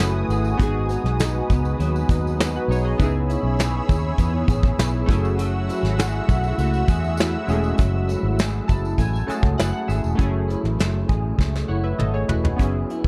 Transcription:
Already playing: F#3 A3 F#4 G#4 G#5 D#6
0.00 F#1 A3 C#4 E4 B4, snare, closed hi-hat, tambourine
0.28 G#1 G#4, closed hi-hat, tambourine
0.44 tambourine
0.57 G#1 G#2 B3 D#4 F#4 B4, kick, closed hi-hat, tambourine
0.63 G#4
0.89 B3, closed hi-hat, tambourine
1.04 B1, snare
1.19 D#4, snare, closed hi-hat, tambourine
1.50 C#2 B3, kick, closed hi-hat, tambourine
1.65 tambourine
1.79 D#2 F#3, closed hi-hat, tambourine
1.96 tambourine
2.09 D#2 D#4, kick, closed hi-hat, tambourine
2.27 tambourine
2.39 B3, snare, closed hi-hat, tambourine
2.56 F#4 B4
2.68 B1 D#4 G#4 C#5, open hi-hat, tambourine
2.84 G#4 D#5
2.97 C#2 C#3 B3 D#4 E4 G#4 C#5 B5 E6, kick, closed hi-hat, tambourine
3.03 G#4
3.30 E4, closed hi-hat, tambourine
3.43 B1
3.59 G#4, snare, closed hi-hat, tambourine
3.89 D#2 E4, kick, closed hi-hat, tambourine
4.18 E2 B3, kick, closed hi-hat, tambourine
4.48 A1 G#4, kick, closed hi-hat, tambourine
4.63 kick
4.78 B1 E4, snare, closed hi-hat, tambourine
5.06 F#1 F#3 A3 C#4 E4 F#4 E5 F#5 E6, kick, closed hi-hat, tambourine
5.12 G#4
5.25 tambourine
5.38 F#3, closed hi-hat, tambourine
5.69 E4, closed hi-hat, tambourine
5.83 G#1, snare
5.98 G#4, snare, closed hi-hat, tambourine
6.28 B1 E4, kick, closed hi-hat, tambourine
6.44 tambourine
6.58 C#2 A3, closed hi-hat, tambourine
6.74 tambourine
6.88 E2 G#4, kick, closed hi-hat, tambourine
7.04 tambourine
7.17 E4, snare, closed hi-hat, tambourine
7.47 E1 G#3 C#4 E4 G#4, closed hi-hat, tambourine
7.51 G#3 A3
7.64 tambourine
7.78 F#1 F#3, kick, closed hi-hat, tambourine
8.08 E4, closed hi-hat, tambourine
8.23 G#1
8.39 G#4, snare, closed hi-hat, tambourine
8.68 F#1 E4 A5, kick, closed hi-hat, tambourine
8.85 tambourine
8.98 A1 A3 G#5, kick, closed hi-hat, tambourine
9.13 G#5, tambourine
9.27 A3 C#4 E4 F#4 G#4 A5, muted fingered electric bass stroke, closed hi-hat
9.31 tambourine
9.43 C#2, kick
9.58 F#1 E4 F#5, snare, closed hi-hat, tambourine
9.73 F#5
9.88 G#1 G#4 E5, closed hi-hat, tambourine
10.04 E1, tambourine
10.15 F#1 F#3 A3 C#4 E4, kick, closed hi-hat
10.20 G#4
10.48 E4, closed hi-hat
10.64 A1, snare
10.79 F#1 A3, snare, closed hi-hat
11.09 A1 G#4, kick, closed hi-hat
11.38 C#2 A3, kick, snare
11.55 snare
11.68 F#1 E4 C#5 F#5
11.84 B4 E5
11.99 G#1 A3 A4 D#5, mid tom
12.14 G#4 C#5
12.28 E1 E4 F#4 B4, floor tom
12.44 D#4 G#4, floor tom
12.56 F#1 B3 C#4 E4 B4 F#5 G#5 E6, kick, closed hi-hat
12.60 F#3 G#4
12.90 E4, closed hi-hat
13.04 F#1, kick

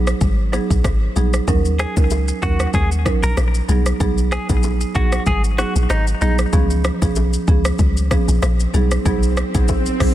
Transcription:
Already playing: A#1
0.07 cross-stick, shaker
0.21 G#1, kick, low conga, shaker
0.53 F#3 B3 D#4 G#4, cross-stick, low bongo, shaker
0.70 A#1, kick, shaker
0.84 G#1, kick, cross-stick, high bongo, shaker
1.16 A#1 F#3 B3 D#4 G#4, high bongo, low conga, shaker
1.33 cross-stick, shaker
1.47 D#2 F#3 C#4 D#4 A#4, kick, low conga, shaker
1.65 shaker
1.79 G#4, cross-stick, low bongo, shaker
1.96 C#2 F#3 C#4 D#4 A#4, kick, low bongo, shaker
2.10 high bongo, shaker
2.28 shaker
2.42 D#2 F#3 C#4 D#4 F#4 A#4, kick, shaker
2.60 cross-stick, shaker
2.73 D#2 G#4, kick, low conga, shaker
2.92 shaker
3.05 F#3 C#4 D#4 A#4, kick, cross-stick, low bongo, shaker
3.23 A#1 A#4, shaker
3.37 A#1, cross-stick, high bongo, shaker
3.55 shaker
3.69 B1 F#3 B3 D#4 G#4, high bongo, low conga, shaker
3.86 cross-stick, shaker
4.00 B1 F#3 B3 D#4 G#4, kick, low conga, shaker
4.18 shaker
4.32 G#4, cross-stick, low bongo, shaker
4.49 A#1 F#3 B3 D#4 G#4, kick, low bongo, shaker
4.63 high bongo, shaker
4.81 shaker
4.95 A#1 F#3 B3 D#4 F#4 G#4, kick, shaker
5.12 cross-stick, shaker
5.26 G#1 G#4, kick, low conga, shaker
5.44 shaker
5.58 F#3 B3 D#4 F#4 G#4, cross-stick, low bongo, shaker
5.76 A#1, shaker
5.90 G#1 D#4, cross-stick, high bongo, shaker
6.07 shaker
6.21 A#1 F#3 B3 D#4 G#4, high bongo, low conga, shaker
6.39 cross-stick, shaker
6.53 C#2 F3 B3 C#4 G#4, kick, swell, low conga, shaker
6.70 shaker
6.84 cross-stick, low bongo, shaker
7.02 B1 F3 B3 C#4 G#4, kick, low bongo, shaker
7.16 high bongo, shaker
7.33 shaker
7.48 C#2 F3 B3 C#4 G#4, kick, shaker
7.65 cross-stick, shaker
7.79 C#2, kick, low conga, shaker
7.97 shaker
8.11 F3 B3 C#4 G#4, kick, cross-stick, low bongo, shaker
8.28 A#1, shaker
8.42 A#1, cross-stick, high bongo, shaker
8.60 shaker
8.74 B1 F#3 B3 D#4 G#4, high bongo, low conga, shaker
8.91 cross-stick, shaker
9.05 B1 F#3 B3 D#4 G#4, kick, low conga, shaker
9.23 shaker
9.37 cross-stick, low bongo, shaker
9.54 A#1 F#3 B3 D#4 G#4, kick, low bongo, shaker
9.68 kick, high bongo, shaker
9.86 shaker
10.00 A#1 F#3 B3 D#4 G#4, kick, cross-stick, open hi-hat, shaker

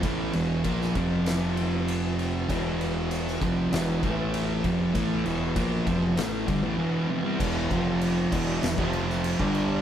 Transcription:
0.03 A1 A2 E3 A3, kick, ride
0.33 E1 E2 B2 E3, ride
0.64 A#1 A#2 F3 A#3, kick, ride
0.82 snare
0.94 F1 F2 C3 F3 G4, kick, ride
0.99 C4
1.26 snare, ride
1.57 ride
1.88 ride
2.19 ride
2.49 E1 E2 B2 E3 B3 F#4, kick, ride
2.81 ride
3.11 ride
3.28 snare
3.41 F1 F2 C3 F3, kick, ride
3.72 E1 E2 B2 E3, snare, ride
4.02 A1 A2 E3 A3, kick, ride
4.34 ride
4.63 F1 F2 C3 E3 F3 B3 F#4, kick, ride
4.94 A1 A2 E3 A3, kick, ride
5.25 E1 E2 B2 E3, ride
5.55 A#1 A#2 F3 A#3, kick, ride
5.86 F1 F2 C3 F3, kick, ride
6.16 A1 A2 E3 A3, snare, ride
6.47 G1 G2 D3, kick, ride
6.62 A1 A2 E3
6.78 E2 B2 E3
7.09 F2 C3
7.24 C3 G3
7.39 E1 E2 B2 E3, kick, crash
7.70 F1 F2 C3 F3, kick, crash
8.01 crash
8.31 E1 E2 B2 E3, kick, crash
8.62 E1 E2 B2, snare, crash
8.77 F1 F2 C3 F3, kick
8.93 crash
9.10 snare
9.24 crash
9.38 G1 G2 D3 G3 B3, kick
9.55 crash

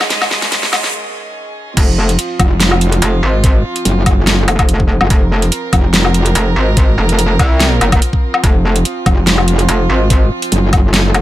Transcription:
Already playing: G#2 D#3 C#4 G#4 D#5, riser
0.01 snare, low woodblock
0.10 G#3, snare, closed hi-hat
0.22 snare, low woodblock
0.31 G#3, snare
0.42 snare, closed hi-hat
0.52 G#3, snare, closed hi-hat
0.63 snare
0.73 G#3, snare, closed hi-hat, low woodblock
0.84 snare
1.77 F1 F3 C4 F4, kick, closed hi-hat, crash
2.09 closed hi-hat
2.19 closed hi-hat
2.40 F1, kick, closed hi-hat, low woodblock
2.60 snare, closed hi-hat
2.72 low woodblock
2.81 closed hi-hat
2.92 closed hi-hat
3.02 F1, closed hi-hat
3.23 G#1
3.44 kick, closed hi-hat
3.76 closed hi-hat
3.85 F#1, closed hi-hat
4.06 kick, closed hi-hat, low woodblock
4.27 snare, closed hi-hat
4.48 F1, closed hi-hat, low woodblock
4.59 F1, kick, closed hi-hat, low woodblock
4.69 closed hi-hat
4.80 kick
5.01 F#1, low woodblock
5.10 F1 A#4, kick, closed hi-hat
5.42 closed hi-hat
5.52 closed hi-hat
5.73 F1, kick, closed hi-hat, low woodblock
5.94 snare, closed hi-hat
6.05 low woodblock
6.14 closed hi-hat
6.26 closed hi-hat
6.35 F1, closed hi-hat
6.56 G#1
6.77 kick, closed hi-hat
6.98 F1
7.09 closed hi-hat
7.19 closed hi-hat
7.39 C2, kick, closed hi-hat, low woodblock
7.60 snare, closed hi-hat
7.81 F#1, closed hi-hat, low woodblock
7.92 kick, closed hi-hat, low woodblock
8.02 closed hi-hat
8.13 kick
8.34 low woodblock
8.43 F1 F4, kick, closed hi-hat
8.76 closed hi-hat
8.85 closed hi-hat
9.06 F1, kick, closed hi-hat, low woodblock
9.27 snare, closed hi-hat
9.38 low woodblock
9.48 closed hi-hat
9.59 closed hi-hat
9.69 F1, closed hi-hat
9.89 G#1
10.10 kick, closed hi-hat
10.42 closed hi-hat
10.52 F#1, closed hi-hat
10.73 kick, closed hi-hat, low woodblock
10.94 snare, closed hi-hat
11.14 F1, closed hi-hat, low woodblock

